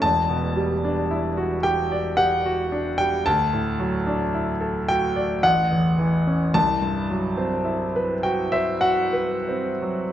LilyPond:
\new Staff \with { instrumentName = "Grand piano" } { \time 3/4 \key e \minor \tempo 4 = 55 << { a''4. g''8 fis''8. g''16 | a''4. g''8 fis''4 | a''4. g''16 e''16 fis''4 | } \\ { <e,, e,>16 b,16 g16 d'16 e'16 fis'16 g'16 d''16 g'16 fis'16 d'16 g16 | d,16 a,16 fis16 d'16 e'16 a'16 fis'16 d''16 a,,16 e,16 e16 cis'16 | c,16 g,16 fis16 c'16 e'16 b'16 fis'16 c''16 fis'16 b'16 c'16 fis16 | } >> }